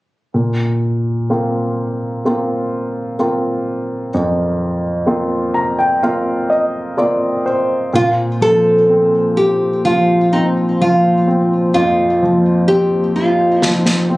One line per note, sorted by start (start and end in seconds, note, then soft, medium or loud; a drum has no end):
0.34 4.09 A#2 soft
1.30 2.21 A#3 soft
1.30 2.21 C4 soft
1.30 2.22 F4 soft
2.25 3.16 A#3 soft
2.25 3.16 C4 soft
2.25 3.16 F4 soft
3.19 4.10 A#3 soft
3.19 4.10 C4 soft
3.19 4.11 F4 soft
4.14 7.90 F2 soft
5.06 5.99 A#3 soft
5.06 5.99 C4 soft
5.06 5.99 F4 soft
5.54 5.76 A#5 soft
5.79 6.00 G5 soft
6.03 6.95 A#3 soft
6.03 6.95 C4 soft
6.03 6.95 F4 soft
6.03 6.47 F5 soft
6.50 6.94 D#5 soft
6.97 7.90 A#3 soft
6.97 7.90 C4 soft
6.97 7.90 F4 soft
6.97 7.42 D5 soft
7.46 7.90 C5 soft
7.92 11.69 A#2 soft
7.92 14.17 A#3 soft
7.92 14.17 C4 soft
7.92 14.17 F4 soft
7.92 8.08 F4 medium
7.92 14.17 C5 soft
8.41 9.83 F3 soft
8.41 9.37 A4 medium
8.90 10.32 C4 soft
9.37 9.85 G4 medium
9.85 10.79 F3 soft
9.85 10.29 F4 medium
10.33 11.26 C4 soft
10.33 10.45 D#4 medium
10.81 12.21 F3 soft
10.81 11.73 F4 medium
11.27 12.68 C4 soft
11.74 14.17 F2 soft
11.74 12.68 F4 medium
12.22 13.61 F3 soft
12.68 14.08 C4 soft
12.68 13.15 G4 medium
13.16 13.79 F4 medium
13.62 14.17 F3 soft
13.62 snare soft
13.79 14.05 D#4 medium
13.86 snare soft
14.09 14.17 C4 soft